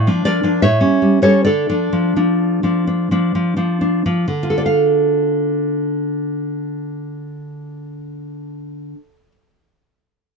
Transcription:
0.00 0.20 D5 medium
0.00 0.21 F5 medium
0.07 0.24 F3 soft
0.07 0.43 D4 soft
0.25 0.42 F3 soft
0.25 0.59 A#4 soft
0.25 0.59 D5 medium
0.43 0.59 F3 soft
0.43 0.60 D4 soft
0.62 0.80 A2 soft
0.62 1.19 C#5 medium
0.62 1.20 E5 medium
0.81 1.01 G3 soft
0.81 1.21 C#4 soft
1.02 1.21 G3 soft
1.22 1.42 G3 soft
1.22 1.42 C#4 soft
1.22 1.43 A4 soft
1.22 1.44 C#5 medium
1.45 1.67 D3 soft
1.45 3.30 A4 soft
1.45 3.29 D5 medium
1.69 1.91 F3 soft
1.69 2.16 D4 soft
1.93 2.15 F3 soft
2.16 2.62 F3 soft
2.16 2.63 D4 soft
2.63 3.10 F3 soft
2.63 2.86 D4 soft
2.87 3.10 D4 soft
3.11 3.34 F3 soft
3.11 3.55 D4 soft
3.35 3.56 F3 soft
3.56 4.05 F3 soft
3.56 3.80 D4 soft
3.81 4.04 D4 soft
4.06 4.25 F3 soft
4.06 4.25 D4 soft
4.28 8.93 D3 soft
4.43 9.09 F4 soft
4.50 9.16 A4 soft
4.58 4.65 D5 soft
4.66 9.31 F5 soft

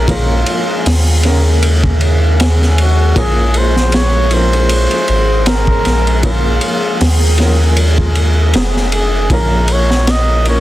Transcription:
0.00 0.44 A#1 medium
0.00 0.08 F3 medium
0.00 0.09 A#3 medium
0.00 0.10 C#4 medium
0.00 9.33 G#4 medium
0.00 0.11 A#4 medium
0.08 1.19 F3 medium
0.08 1.20 A#3 medium
0.08 1.21 C#4 medium
0.08 1.21 F4 medium
0.08 1.21 A#4 medium
0.08 kick loud
0.08 ride medium
0.46 ride medium
0.86 3.13 D#2 loud
0.86 snare loud
0.86 open hi-hat medium
1.23 3.12 C#3 medium
1.23 3.12 A#3 medium
1.23 3.13 C#4 medium
1.23 3.13 A#4 medium
1.23 snare soft
1.23 ride medium
1.63 ride medium
1.84 kick loud
2.01 ride medium
2.40 snare loud
2.40 ride medium
2.62 snare soft
2.78 3.19 F#4 medium
2.78 ride medium
3.15 4.88 A#1 medium
3.15 4.27 F3 medium
3.15 4.28 A#3 medium
3.15 4.28 C#4 medium
3.15 3.59 G#4 medium
3.15 4.29 A#4 medium
3.15 kick loud
3.15 ride medium
3.54 3.97 C5 medium
3.54 ride medium
3.76 snare medium
3.92 4.34 C#5 loud
3.92 snare loud
3.92 ride medium
4.31 6.20 F3 medium
4.31 6.20 A#3 medium
4.31 6.21 C#4 medium
4.31 6.21 A#4 medium
4.31 5.48 C5 loud
4.31 ride medium
4.53 ride soft
4.69 ride medium
4.91 ride soft
5.08 5.82 G#1 loud
5.08 ride medium
5.46 6.23 A#4 loud
5.46 snare loud
5.46 ride medium
5.67 kick loud
5.85 6.59 A#1 medium
5.85 snare soft
5.85 ride medium
6.07 ride soft
6.23 7.35 F3 medium
6.23 7.35 A#3 medium
6.23 7.36 C#4 medium
6.23 7.35 F4 medium
6.23 7.36 A#4 medium
6.23 kick loud
6.23 ride medium
6.61 ride medium
7.00 8.54 D#2 medium
7.00 snare loud
7.00 open hi-hat medium
7.38 9.27 F3 medium
7.38 9.27 A#3 medium
7.38 9.28 C#4 medium
7.38 9.29 A#4 medium
7.38 snare soft
7.38 ride medium
7.77 ride medium
7.98 kick medium
8.15 ride medium
8.54 9.29 F1 medium
8.54 snare loud
8.54 ride medium
8.76 snare soft
8.92 9.34 G#4 medium
8.92 ride medium
9.30 10.60 A#1 loud
9.30 10.42 F3 medium
9.30 10.43 A#3 medium
9.30 10.43 C#4 medium
9.30 10.60 A#4 medium
9.30 9.74 A#4 medium
9.30 10.44 A#4 medium
9.30 kick loud
9.30 ride medium
9.68 ride medium
9.72 10.12 C#5 loud
9.91 snare medium
10.07 10.48 D#5 loud
10.07 snare loud
10.07 ride medium
10.45 10.60 F3 medium
10.45 10.60 A#3 medium
10.45 10.60 C#4 medium
10.45 10.60 C#5 loud
10.45 ride medium
10.50 10.60 A#4 medium

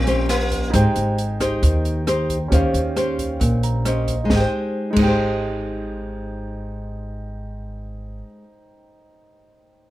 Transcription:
0.00 0.69 A#1 medium
0.00 0.72 A#2 medium
0.00 0.26 C4 medium
0.00 0.68 D#4 medium
0.00 0.69 G4 medium
0.00 0.70 C5 soft
0.00 0.71 F5 medium
0.07 0.70 C#4 medium
0.07 0.70 G4 medium
0.07 0.70 C5 medium
0.07 closed hi-hat soft
0.29 0.71 A#3 medium
0.29 cross-stick soft
0.29 closed hi-hat soft
0.51 kick soft
0.51 closed hi-hat soft
0.70 0.84 G#1 medium
0.70 1.60 G#3 soft
0.70 2.46 D#4 medium
0.70 1.18 D#4 medium
0.70 2.48 C5 soft
0.70 kick medium
0.70 cross-stick medium
0.70 closed hi-hat medium
0.74 1.18 G4 medium
0.74 1.18 C5 medium
0.74 2.49 G5 medium
0.96 1.59 G#1 medium
0.96 closed hi-hat soft
1.18 closed hi-hat soft
1.40 2.03 D#4 medium
1.40 2.04 G4 medium
1.40 2.04 C5 medium
1.40 kick soft
1.40 cross-stick soft
1.40 closed hi-hat soft
1.63 2.48 D#2 medium
1.63 2.49 D#3 medium
1.63 kick medium
1.63 closed hi-hat soft
1.85 closed hi-hat soft
2.07 2.37 D#4 soft
2.07 2.37 G4 medium
2.07 2.37 C5 medium
2.07 cross-stick medium
2.07 closed hi-hat soft
2.30 kick soft
2.30 closed hi-hat soft
2.48 2.62 D#2 medium
2.48 3.38 D#3 soft
2.48 4.24 C#4 medium
2.48 2.80 C#4 soft
2.48 4.25 G4 soft
2.48 2.81 G4 soft
2.48 4.26 C5 medium
2.48 kick medium
2.48 closed hi-hat medium
2.53 2.81 C5 medium
2.53 4.27 F5 medium
2.74 3.37 D#2 medium
2.74 closed hi-hat soft
2.96 3.81 C#4 soft
2.96 3.82 G4 medium
2.96 3.82 C5 medium
2.96 cross-stick medium
2.96 closed hi-hat soft
3.19 kick soft
3.19 closed hi-hat soft
3.40 4.26 A#1 medium
3.40 4.27 A#2 soft
3.40 kick medium
3.40 closed hi-hat soft
3.63 3.84 A#5 soft
3.63 closed hi-hat soft
3.85 4.14 C#4 soft
3.85 4.14 G4 soft
3.85 4.14 C5 medium
3.85 4.27 D#5 soft
3.85 cross-stick medium
3.85 closed hi-hat soft
4.08 kick soft
4.08 closed hi-hat soft
4.24 4.92 G#3 medium
4.24 4.39 D#4 medium
4.30 4.42 G#1 medium
4.30 4.98 D#4 soft
4.30 4.43 C5 soft
4.30 kick medium
4.30 snare medium
4.36 4.96 G4 medium
4.36 4.45 G5 medium
4.40 5.07 C5 medium
4.91 8.43 G#3 medium
4.91 8.15 D#4 medium
4.96 8.21 G#1 medium
4.96 8.49 D#4 medium
4.96 8.22 C5 soft
4.96 kick medium
4.96 crash medium
5.02 8.54 G4 medium
5.02 8.26 G5 medium
5.08 8.58 C5 medium

